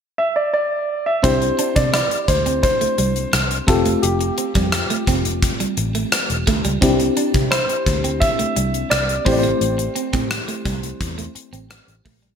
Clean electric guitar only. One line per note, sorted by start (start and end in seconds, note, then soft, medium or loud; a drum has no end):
1.24 1.37 C4 medium
1.41 muted clean electric guitar stroke soft
1.59 1.72 D4 medium
1.94 2.07 E4 medium
2.11 muted clean electric guitar stroke soft
2.46 2.59 C4 medium
2.64 muted clean electric guitar stroke soft
2.81 2.94 A3 medium
2.98 3.12 G3 medium
3.33 muted clean electric guitar stroke soft
3.68 3.82 A3 medium
3.86 3.99 A3 medium
4.21 muted clean electric guitar stroke soft
4.38 4.51 C4 medium
4.55 4.69 G3 medium
4.73 muted clean electric guitar stroke soft
4.90 5.04 A3 medium
5.08 5.21 C4 medium
5.60 5.74 G3 medium
5.78 muted clean electric guitar stroke soft
5.95 6.08 A3 medium
6.13 muted clean electric guitar stroke soft
6.47 6.61 A3 medium
6.65 6.78 G3 medium
6.82 6.96 C4 medium
7.00 muted clean electric guitar stroke soft
7.17 7.30 D4 medium
7.52 7.65 E4 medium
7.69 muted clean electric guitar stroke soft
8.04 8.18 C4 medium
8.21 muted clean electric guitar stroke soft
8.39 8.52 A3 medium
8.56 8.70 G3 medium
8.91 muted clean electric guitar stroke soft
9.26 9.40 A3 medium
9.43 9.57 A3 medium
9.78 muted clean electric guitar stroke soft
9.96 10.09 C4 medium
10.13 10.27 C4 medium
10.31 muted clean electric guitar stroke soft
10.48 10.62 A3 medium
10.65 10.79 G3 medium
11.18 11.31 A3 medium
11.35 muted clean electric guitar stroke soft
11.53 11.66 C4 medium
11.70 muted clean electric guitar stroke soft
12.05 12.19 A3 medium
12.22 12.35 G3 medium